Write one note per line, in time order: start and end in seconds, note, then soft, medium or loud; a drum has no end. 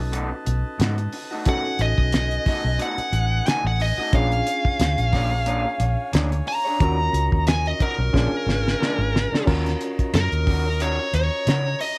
0.00 0.31 B1 medium
0.00 1.42 C#4 medium
0.00 1.43 D#4 medium
0.00 1.43 F#4 medium
0.00 1.43 A4 medium
0.00 4.09 B4 medium
0.00 4.10 D#5 medium
0.00 1.44 A5 medium
0.12 0.31 B2 medium
0.12 0.31 A3 medium
0.12 0.30 D#4 medium
0.12 0.29 F#4 medium
0.12 closed hi-hat medium
0.30 muted clean electric guitar stroke soft
0.46 0.62 B1 medium
0.46 muted clean electric guitar stroke soft
0.46 closed hi-hat medium
0.78 1.07 G#2 loud
0.78 0.98 B2 medium
0.78 0.98 A3 medium
0.78 0.97 D#4 medium
0.78 0.96 F#4 medium
0.78 snare loud
0.78 closed hi-hat medium
0.98 muted clean electric guitar stroke soft
0.98 closed hi-hat soft
1.13 muted clean electric guitar stroke soft
1.13 open hi-hat medium
1.31 1.45 A3 soft
1.31 1.46 D#4 medium
1.31 1.46 F#4 medium
1.45 1.65 B2 medium
1.45 1.64 A3 medium
1.45 4.10 C#4 medium
1.45 1.63 D#4 medium
1.45 4.10 D#4 medium
1.45 4.10 F#4 medium
1.45 1.63 F#4 medium
1.45 4.10 A4 medium
1.45 1.80 F#5 medium
1.45 6.76 G#5 medium
1.45 kick loud
1.45 closed hi-hat medium
1.64 muted clean electric guitar stroke soft
1.79 1.94 A1 loud
1.79 2.78 D#5 medium
1.79 muted clean electric guitar stroke soft
1.79 closed hi-hat medium
1.98 2.37 B1 medium
1.98 kick medium
2.12 muted clean electric guitar stroke soft
2.12 snare loud
2.12 closed hi-hat medium
2.31 closed hi-hat soft
2.45 2.65 B2 medium
2.45 2.65 A3 medium
2.45 2.64 D#4 medium
2.45 2.63 F#4 medium
2.45 muted fingered electric bass stroke soft
2.45 kick medium
2.45 snare soft
2.45 open hi-hat medium
2.64 2.77 B1 medium
2.64 muted clean electric guitar stroke soft
2.78 2.98 B2 medium
2.78 2.98 A3 medium
2.78 2.97 D#4 medium
2.78 2.96 F#4 medium
2.78 3.48 F#5 medium
2.78 closed hi-hat medium
2.98 muted clean electric guitar stroke soft
2.98 muted fingered electric bass stroke soft
2.98 closed hi-hat soft
3.12 3.40 A1 medium
3.12 muted clean electric guitar stroke soft
3.12 closed hi-hat medium
3.45 3.64 B2 medium
3.45 3.65 A3 medium
3.45 3.64 D#4 medium
3.45 3.63 F#4 medium
3.45 3.66 G#5 medium
3.45 snare loud
3.45 closed hi-hat medium
3.65 3.92 A1 loud
3.65 3.81 F#5 medium
3.65 muted clean electric guitar stroke soft
3.79 4.13 D#5 medium
3.79 muted clean electric guitar stroke soft
3.79 open hi-hat medium
3.98 4.12 A3 soft
3.98 4.13 D#4 medium
3.98 4.13 F#4 medium
4.13 4.40 A#1 loud
4.13 4.32 A#3 medium
4.13 6.76 C#4 medium
4.13 4.31 D4 medium
4.13 6.76 D4 medium
4.13 6.77 F4 medium
4.13 4.30 G#4 medium
4.13 6.77 G#4 medium
4.13 9.30 C#5 medium
4.13 4.30 C#5 medium
4.13 6.77 F5 medium
4.13 6.10 F5 loud
4.13 kick loud
4.13 closed hi-hat medium
4.31 muted clean electric guitar stroke soft
4.31 closed hi-hat soft
4.46 muted clean electric guitar stroke soft
4.46 closed hi-hat medium
4.65 muted fingered electric bass stroke soft
4.65 kick medium
4.79 4.95 D2 medium
4.79 muted clean electric guitar stroke soft
4.79 snare loud
4.79 closed hi-hat medium
4.98 5.64 A#1 medium
4.98 closed hi-hat soft
5.13 5.32 A#3 medium
5.13 5.32 D4 medium
5.13 5.31 G#4 medium
5.13 5.30 C#5 medium
5.13 kick medium
5.13 snare soft
5.13 open hi-hat medium
5.31 muted clean electric guitar stroke medium
5.46 5.65 A#3 medium
5.46 5.65 D4 medium
5.46 5.64 G#4 medium
5.46 5.64 C#5 medium
5.46 closed hi-hat medium
5.65 muted clean electric guitar stroke soft
5.80 5.95 A#1 medium
5.80 muted clean electric guitar stroke soft
5.80 closed hi-hat medium
6.13 6.40 D2 loud
6.13 6.32 A#3 medium
6.13 6.31 D4 medium
6.13 6.31 G#4 medium
6.13 6.30 C#5 medium
6.13 snare loud
6.13 closed hi-hat medium
6.32 muted clean electric guitar stroke soft
6.32 closed hi-hat soft
6.46 7.45 A#5 medium
6.46 muted clean electric guitar stroke soft
6.46 open hi-hat medium
6.65 6.80 D4 soft
6.65 6.81 G#4 soft
6.65 6.80 C#5 medium
6.80 7.07 D#2 loud
6.80 6.98 D#3 medium
6.80 6.99 C#4 medium
6.80 8.11 C#4 medium
6.80 8.12 F4 medium
6.80 8.11 F#4 medium
6.80 6.98 F#4 medium
6.80 6.98 A#4 medium
6.80 8.12 A#4 medium
6.80 8.12 D#5 medium
6.80 8.12 A#5 medium
6.80 kick loud
6.80 closed hi-hat medium
6.99 muted clean electric guitar stroke soft
7.13 7.28 C#2 loud
7.13 muted clean electric guitar stroke soft
7.13 closed hi-hat medium
7.32 7.71 D#2 medium
7.32 kick medium
7.47 7.66 G#5 medium
7.47 muted clean electric guitar stroke soft
7.47 snare loud
7.47 closed hi-hat medium
7.66 7.81 D#5 medium
7.66 closed hi-hat soft
7.79 7.98 D#3 medium
7.79 7.98 C#4 medium
7.79 7.98 F#4 medium
7.79 7.97 A#4 medium
7.79 9.44 A#4 loud
7.79 muted fingered electric bass stroke soft
7.79 kick medium
7.79 closed hi-hat medium
7.98 8.11 B1 medium
7.98 muted clean electric guitar stroke soft
8.13 8.29 A#1 loud
8.13 8.32 A#2 medium
8.13 8.32 G#3 medium
8.13 9.44 C#4 medium
8.13 8.31 C#4 medium
8.13 9.44 D4 medium
8.13 8.30 D4 medium
8.13 9.45 F4 medium
8.13 9.45 G#4 medium
8.13 9.30 F5 medium
8.13 9.30 G#5 medium
8.13 kick medium
8.13 snare medium
8.31 muted clean electric guitar stroke medium
8.46 8.73 G#1 medium
8.46 muted clean electric guitar stroke soft
8.46 snare medium
8.68 snare medium
8.80 8.99 A#2 medium
8.80 8.99 G#3 medium
8.80 8.99 C#4 medium
8.80 8.98 D4 medium
8.80 snare medium
8.98 9.25 G#1 medium
8.98 muted clean electric guitar stroke soft
9.14 muted clean electric guitar stroke soft
9.14 snare medium
9.32 9.48 G#3 soft
9.32 9.47 C#4 medium
9.32 9.47 D4 medium
9.32 muted fingered electric bass stroke soft
9.32 snare medium
9.46 9.74 D#2 medium
9.46 9.66 D#3 medium
9.46 11.98 C#4 medium
9.46 9.66 C#4 medium
9.46 11.98 F4 medium
9.46 11.98 F#4 medium
9.46 9.66 F#4 medium
9.46 11.98 A#4 medium
9.46 9.66 A#4 medium
9.46 11.98 C#5 medium
9.46 11.98 D#5 medium
9.46 11.98 A#5 medium
9.46 kick loud
9.46 crash medium
9.66 muted clean electric guitar stroke soft
9.66 snare soft
9.66 closed hi-hat soft
9.81 muted clean electric guitar stroke soft
9.81 closed hi-hat medium
9.99 muted fingered electric bass stroke soft
9.99 kick medium
9.99 closed hi-hat soft
10.14 10.28 F#2 medium
10.14 10.83 A#4 medium
10.14 muted clean electric guitar stroke soft
10.14 snare loud
10.14 closed hi-hat medium
10.32 10.98 D#2 medium
10.32 closed hi-hat soft
10.47 10.65 D#3 medium
10.47 10.66 C#4 medium
10.47 10.65 F#4 medium
10.47 10.64 A#4 medium
10.47 kick medium
10.47 open hi-hat medium
10.65 muted clean electric guitar stroke soft
10.80 10.99 D#3 medium
10.80 10.99 C#4 medium
10.80 10.99 F#4 medium
10.80 10.98 A#4 medium
10.80 11.12 C#5 medium
10.80 closed hi-hat medium
10.99 muted clean electric guitar stroke soft
11.13 11.28 D#2 medium
11.13 11.77 C#5 medium
11.13 muted clean electric guitar stroke soft
11.13 closed hi-hat medium
11.47 11.74 C#3 medium
11.47 11.65 D#3 medium
11.47 11.66 C#4 medium
11.47 11.65 F#4 medium
11.47 11.65 A#4 medium
11.47 snare medium
11.47 closed hi-hat medium
11.66 muted clean electric guitar stroke soft
11.80 11.98 D#5 medium
11.80 muted clean electric guitar stroke soft
11.80 open hi-hat medium